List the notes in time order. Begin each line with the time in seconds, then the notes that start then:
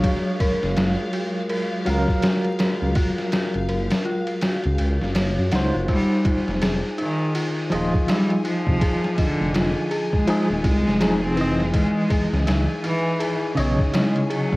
Already playing: F#3 G#3 C#5 F5
0.04 F#4, kick, ride
0.40 A#4, kick, ride
0.63 F#1, snare
0.77 F#1 F4, snare, ride
1.13 F#4, ride
1.49 A#4, ride
1.85 C#2 F#3 F4 F5, ride
1.90 A#4
2.08 kick
2.22 F#4, snare, ride
2.44 ride
2.59 A#4, snare, ride
2.82 C#2
2.95 F4, kick, ride
3.18 snare
3.32 F#4, snare, ride
3.54 F#1, ride
3.69 F#1 A#4, ride
3.90 snare, ride
4.05 F4, ride
4.27 ride
4.41 F#4, snare, ride
4.64 C#2, ride
4.78 C#2 F#4, ride
5.01 F#1, snare
5.15 C#5, snare, ride
5.39 F#2
5.52 C#2 D#4 F#5, snare, ride
5.56 C5
5.74 F#1 F4
5.88 G3 D#4 G#5, kick, ride
6.25 F4, kick, ride
6.48 F1, snare
6.62 F1 G#4, snare, ride
6.98 D#3 D#4, ride
7.35 F4, ride
7.70 D#1 F3 G#4 D#5, ride
7.75 F4
7.94 kick
8.08 G3 D#4, snare, ride
8.30 ride
8.45 F3 F4, ride
8.67 C2, kick
8.81 G#4, kick, ride
9.04 snare
9.18 D3 D#5, kick, ride
9.41 F1
9.54 F1 F4, snare, ride
9.91 G#4, ride
10.13 G#3, kick
10.28 F3 D#4 G#4, ride
10.50 D#1
10.64 C2 G#3 F4, kick, ride
10.87 F1, snare
11.00 F3 D#4 G#4, snare, ride
11.24 C4
11.36 E3 D#4, ride
11.41 D#5
11.60 snare
11.74 G#3 E4, kick, ride
12.10 G#4, kick, ride
12.33 C#2, snare
12.47 C#2 D#4, snare, ride
12.84 E3 E4, ride
13.20 G#4, ride
13.55 B1 C#3 D#4 D#5, ride
13.60 C#5
13.79 kick
13.93 G#3 E4, snare, ride
14.16 ride
14.30 F#3 G#4, ride
14.52 G#1, kick